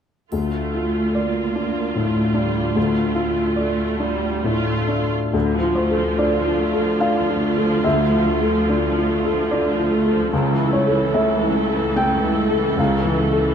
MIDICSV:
0, 0, Header, 1, 5, 480
1, 0, Start_track
1, 0, Key_signature, -1, "minor"
1, 0, Tempo, 834492
1, 186, Time_signature, 3, 2, 24, 8
1, 664, Tempo, 807537
1, 2104, Tempo, 882353
1, 3064, Tempo, 836820
1, 4984, Tempo, 817439
1, 7835, End_track
2, 0, Start_track
2, 0, Title_t, "Felt piano"
2, 0, Program_c, 0, 0
2, 184, Note_on_c, 0, 38, 29
2, 281, Control_c, 0, 64, 127
2, 428, Note_on_c, 0, 65, 24
2, 660, Note_on_c, 0, 74, 26
2, 809, Note_off_c, 0, 65, 0
2, 900, Note_on_c, 0, 62, 24
2, 1046, Note_off_c, 0, 74, 0
2, 1140, Note_on_c, 0, 45, 28
2, 1285, Note_off_c, 0, 62, 0
2, 1369, Note_on_c, 0, 62, 27
2, 1522, Note_off_c, 0, 45, 0
2, 1594, Note_off_c, 0, 38, 0
2, 1612, Note_on_c, 0, 38, 37
2, 1630, Control_c, 0, 64, 0
2, 1715, Control_c, 0, 64, 127
2, 1756, Note_off_c, 0, 62, 0
2, 1851, Note_on_c, 0, 65, 35
2, 2095, Note_on_c, 0, 74, 35
2, 2238, Note_off_c, 0, 65, 0
2, 2332, Note_on_c, 0, 62, 33
2, 2475, Note_off_c, 0, 74, 0
2, 2574, Note_on_c, 0, 45, 35
2, 2721, Note_off_c, 0, 62, 0
2, 2813, Note_on_c, 0, 62, 30
2, 2969, Note_off_c, 0, 45, 0
2, 3039, Note_off_c, 0, 38, 0
2, 3056, Note_on_c, 0, 38, 36
2, 3060, Note_off_c, 0, 62, 0
2, 3074, Control_c, 0, 64, 0
2, 3189, Control_c, 0, 64, 127
2, 3224, Note_on_c, 0, 65, 28
2, 3301, Note_on_c, 0, 72, 45
2, 3386, Note_on_c, 0, 69, 32
2, 3483, Note_off_c, 0, 65, 0
2, 3527, Note_off_c, 0, 72, 0
2, 3547, Note_on_c, 0, 74, 40
2, 3548, Note_on_c, 0, 62, 28
2, 3642, Note_off_c, 0, 69, 0
2, 3705, Note_on_c, 0, 65, 32
2, 3800, Note_off_c, 0, 62, 0
2, 3861, Note_on_c, 0, 69, 30
2, 3958, Note_off_c, 0, 65, 0
2, 3998, Note_off_c, 0, 74, 0
2, 4017, Note_on_c, 0, 77, 56
2, 4018, Note_on_c, 0, 62, 29
2, 4116, Note_off_c, 0, 69, 0
2, 4181, Note_on_c, 0, 65, 31
2, 4275, Note_off_c, 0, 62, 0
2, 4342, Note_on_c, 0, 69, 30
2, 4436, Note_off_c, 0, 65, 0
2, 4473, Note_off_c, 0, 38, 0
2, 4475, Note_off_c, 0, 77, 0
2, 4497, Note_on_c, 0, 76, 51
2, 4503, Note_on_c, 0, 38, 40
2, 4510, Control_c, 0, 64, 0
2, 4598, Note_off_c, 0, 69, 0
2, 4599, Control_c, 0, 64, 127
2, 4667, Note_on_c, 0, 65, 31
2, 4826, Note_on_c, 0, 69, 29
2, 4923, Note_off_c, 0, 65, 0
2, 4986, Note_on_c, 0, 62, 26
2, 5084, Note_off_c, 0, 69, 0
2, 5149, Note_on_c, 0, 65, 28
2, 5245, Note_off_c, 0, 62, 0
2, 5313, Note_on_c, 0, 69, 29
2, 5404, Note_off_c, 0, 65, 0
2, 5441, Note_off_c, 0, 76, 0
2, 5466, Note_on_c, 0, 74, 48
2, 5474, Note_on_c, 0, 62, 29
2, 5563, Note_off_c, 0, 69, 0
2, 5631, Note_on_c, 0, 65, 30
2, 5722, Note_off_c, 0, 62, 0
2, 5784, Note_on_c, 0, 69, 32
2, 5881, Note_off_c, 0, 65, 0
2, 5918, Note_off_c, 0, 74, 0
2, 5919, Note_off_c, 0, 38, 0
2, 5943, Note_off_c, 0, 69, 0
2, 5947, Note_on_c, 0, 37, 42
2, 5951, Control_c, 0, 64, 0
2, 6062, Control_c, 0, 64, 127
2, 6107, Note_on_c, 0, 64, 33
2, 6182, Note_on_c, 0, 73, 42
2, 6264, Note_on_c, 0, 69, 32
2, 6363, Note_off_c, 0, 64, 0
2, 6407, Note_off_c, 0, 73, 0
2, 6424, Note_on_c, 0, 76, 55
2, 6426, Note_on_c, 0, 57, 30
2, 6520, Note_off_c, 0, 69, 0
2, 6580, Note_on_c, 0, 64, 29
2, 6680, Note_off_c, 0, 57, 0
2, 6746, Note_on_c, 0, 69, 31
2, 6838, Note_off_c, 0, 64, 0
2, 6880, Note_off_c, 0, 76, 0
2, 6906, Note_on_c, 0, 57, 34
2, 6907, Note_on_c, 0, 79, 63
2, 7002, Note_off_c, 0, 69, 0
2, 7062, Note_on_c, 0, 64, 31
2, 7164, Note_off_c, 0, 57, 0
2, 7220, Note_on_c, 0, 69, 33
2, 7323, Note_off_c, 0, 64, 0
2, 7368, Note_off_c, 0, 79, 0
2, 7369, Note_off_c, 0, 37, 0
2, 7381, Note_on_c, 0, 37, 41
2, 7390, Note_on_c, 0, 77, 49
2, 7400, Control_c, 0, 64, 0
2, 7478, Control_c, 0, 64, 127
2, 7482, Note_off_c, 0, 69, 0
2, 7546, Note_on_c, 0, 52, 33
2, 7705, Note_on_c, 0, 69, 33
2, 7799, Note_off_c, 0, 52, 0
2, 7835, Note_off_c, 0, 37, 0
2, 7835, Note_off_c, 0, 69, 0
2, 7835, Note_off_c, 0, 77, 0
2, 7835, End_track
3, 0, Start_track
3, 0, Title_t, "Viola section"
3, 0, Program_c, 1, 48
3, 186, Note_on_c, 1, 57, 33
3, 187, Note_on_c, 1, 65, 32
3, 640, Note_off_c, 1, 57, 0
3, 659, Note_on_c, 1, 58, 30
3, 1135, Note_on_c, 1, 57, 34
3, 1142, Note_off_c, 1, 58, 0
3, 1377, Note_off_c, 1, 57, 0
3, 1377, Note_on_c, 1, 55, 39
3, 1611, Note_on_c, 1, 57, 40
3, 1617, Note_off_c, 1, 55, 0
3, 2088, Note_off_c, 1, 57, 0
3, 2095, Note_on_c, 1, 57, 48
3, 2327, Note_off_c, 1, 57, 0
3, 2333, Note_on_c, 1, 55, 50
3, 2555, Note_off_c, 1, 65, 0
3, 2571, Note_on_c, 1, 57, 48
3, 2573, Note_on_c, 1, 65, 49
3, 2574, Note_off_c, 1, 55, 0
3, 2942, Note_off_c, 1, 65, 0
3, 2948, Note_off_c, 1, 57, 0
3, 3058, Note_on_c, 1, 50, 36
3, 3060, Note_on_c, 1, 65, 38
3, 3175, Note_off_c, 1, 50, 0
3, 3180, Note_on_c, 1, 53, 35
3, 3300, Note_on_c, 1, 57, 33
3, 3305, Note_off_c, 1, 53, 0
3, 3420, Note_on_c, 1, 53, 33
3, 3425, Note_off_c, 1, 57, 0
3, 3539, Note_on_c, 1, 50, 35
3, 3544, Note_off_c, 1, 53, 0
3, 3661, Note_on_c, 1, 53, 37
3, 3662, Note_off_c, 1, 50, 0
3, 3777, Note_on_c, 1, 57, 37
3, 3782, Note_off_c, 1, 53, 0
3, 3895, Note_on_c, 1, 53, 33
3, 3899, Note_off_c, 1, 57, 0
3, 4011, Note_on_c, 1, 50, 37
3, 4018, Note_off_c, 1, 53, 0
3, 4128, Note_on_c, 1, 53, 31
3, 4136, Note_off_c, 1, 50, 0
3, 4247, Note_on_c, 1, 57, 34
3, 4254, Note_off_c, 1, 53, 0
3, 4371, Note_on_c, 1, 53, 38
3, 4373, Note_off_c, 1, 57, 0
3, 4496, Note_off_c, 1, 53, 0
3, 4496, Note_on_c, 1, 50, 38
3, 4610, Note_off_c, 1, 50, 0
3, 4619, Note_on_c, 1, 53, 36
3, 4738, Note_on_c, 1, 57, 33
3, 4741, Note_off_c, 1, 53, 0
3, 4862, Note_off_c, 1, 57, 0
3, 4862, Note_on_c, 1, 53, 37
3, 4977, Note_on_c, 1, 50, 38
3, 4984, Note_off_c, 1, 53, 0
3, 5103, Note_off_c, 1, 50, 0
3, 5109, Note_on_c, 1, 53, 37
3, 5228, Note_on_c, 1, 57, 35
3, 5229, Note_off_c, 1, 53, 0
3, 5342, Note_on_c, 1, 53, 33
3, 5347, Note_off_c, 1, 57, 0
3, 5461, Note_on_c, 1, 50, 37
3, 5464, Note_off_c, 1, 53, 0
3, 5582, Note_off_c, 1, 50, 0
3, 5582, Note_on_c, 1, 53, 34
3, 5699, Note_on_c, 1, 57, 36
3, 5701, Note_off_c, 1, 53, 0
3, 5819, Note_off_c, 1, 57, 0
3, 5823, Note_on_c, 1, 53, 38
3, 5915, Note_off_c, 1, 65, 0
3, 5935, Note_on_c, 1, 49, 38
3, 5937, Note_on_c, 1, 69, 41
3, 5942, Note_off_c, 1, 53, 0
3, 6050, Note_off_c, 1, 49, 0
3, 6055, Note_on_c, 1, 52, 39
3, 6171, Note_on_c, 1, 57, 35
3, 6180, Note_off_c, 1, 52, 0
3, 6293, Note_on_c, 1, 52, 38
3, 6298, Note_off_c, 1, 57, 0
3, 6418, Note_on_c, 1, 49, 37
3, 6419, Note_off_c, 1, 52, 0
3, 6539, Note_on_c, 1, 52, 38
3, 6541, Note_off_c, 1, 49, 0
3, 6658, Note_on_c, 1, 57, 42
3, 6661, Note_off_c, 1, 52, 0
3, 6781, Note_off_c, 1, 57, 0
3, 6783, Note_on_c, 1, 52, 37
3, 6904, Note_off_c, 1, 52, 0
3, 6909, Note_on_c, 1, 49, 38
3, 7027, Note_off_c, 1, 49, 0
3, 7031, Note_on_c, 1, 52, 37
3, 7150, Note_off_c, 1, 52, 0
3, 7154, Note_on_c, 1, 57, 37
3, 7271, Note_on_c, 1, 52, 39
3, 7272, Note_off_c, 1, 57, 0
3, 7391, Note_off_c, 1, 52, 0
3, 7398, Note_on_c, 1, 49, 46
3, 7506, Note_off_c, 1, 49, 0
3, 7518, Note_on_c, 1, 52, 42
3, 7633, Note_off_c, 1, 52, 0
3, 7637, Note_on_c, 1, 57, 37
3, 7750, Note_off_c, 1, 57, 0
3, 7752, Note_on_c, 1, 52, 42
3, 7835, Note_off_c, 1, 52, 0
3, 7835, Note_off_c, 1, 69, 0
3, 7835, End_track
4, 0, Start_track
4, 0, Title_t, "Cello section"
4, 0, Program_c, 2, 48
4, 184, Note_on_c, 2, 38, 34
4, 2928, Note_off_c, 2, 38, 0
4, 3062, Note_on_c, 2, 38, 40
4, 5916, Note_off_c, 2, 38, 0
4, 5942, Note_on_c, 2, 37, 43
4, 7835, Note_off_c, 2, 37, 0
4, 7835, End_track
5, 0, Start_track
5, 0, Title_t, "Drums"
5, 183, Note_on_c, 9, 81, 25
5, 240, Note_off_c, 9, 81, 0
5, 7835, End_track
0, 0, End_of_file